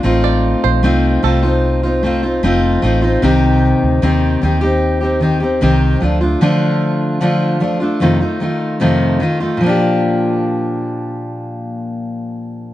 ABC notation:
X:1
M:4/4
L:1/16
Q:1/4=75
K:Bb
V:1 name="Five-string banjo"
z d z c z2 A4 z6 | z16 | z16 | z16 |]
V:2 name="Steel-string acoustic guitar"
[A,CEF]4 [A,CEF]2 [A,CEF] [CEF]2 [CEF] [A,CEF] [CEF] [A,CEF]2 [A,CEF] [CEF] | [C,E,CEG]4 [C,E,CEG]2 [E,CEG] [CEG]2 [CEG] [E,CEG] [CEG] [C,E,CEG]2 [F,A,DF] [A,DF] | [D,F,A,DF]4 [D,F,A,DF]2 [F,A,DF] [A,DF] [F,,C,E,A,EF] [E,A,EF] [E,A,EF]2 [F,,C,E,A,EF]2 [E,A,EF] [E,A,EF] | [B,,F,B,DG]16 |]
V:3 name="Fingered electric bass" clef=bass
A,,,3 B,,, C,,2 C,,6 F,,,2 A,,,2 | C,,3 D,, E,,2 E,,6 C,,2 D,,2 | z16 | z16 |]